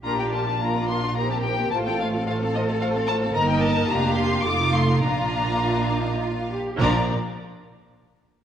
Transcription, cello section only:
\new Staff \with { instrumentName = "Cello section" } { \time 3/4 \key bes \major \tempo 4 = 106 g'4 f'4 g'4 | f'4 a'2 | bes'4 g'4 f'4 | f'4 f'16 d'16 ees'8 f'8 g'8 |
bes,8 r2 r8 | }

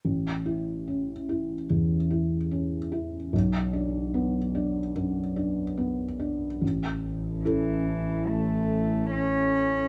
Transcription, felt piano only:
\new Staff \with { instrumentName = "Felt piano" } { \time 4/4 \key a \major \tempo 4 = 73 a,,8 e'8 cis'8 e'8 e,8 e'8 cis'8 e'8 | b,,8 d'8 b8 d'8 fis,8 d'8 b8 d'8 | a,,4 <cis' e' a'>2. | }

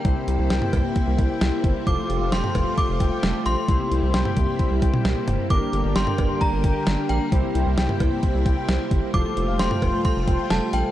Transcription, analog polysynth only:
\new Staff \with { instrumentName = "Analog polysynth" } { \time 4/4 \key c \mixolydian \tempo 4 = 132 <e' g' c''>1 | <f' a' c''>1 | <e' g' c''>1 | <d' g' bes'>1 |
<e' g' c''>1 | <f' a' c''>1 | }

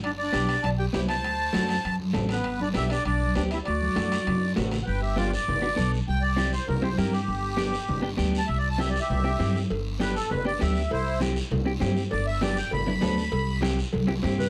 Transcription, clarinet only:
\new Staff \with { instrumentName = "Clarinet" } { \time 4/4 \key g \major \tempo 4 = 199 d'8 d'4. d''8 g'8 g'8 c''8~ | c''2~ c''8 r4 b8~ | b8 d'8 g'8 d'8 d'4 d'8 e'8 | fis'2. r4 |
r1 | r1 | r1 | r1 |
r1 | r1 | r1 | r2. r8 b'8 | }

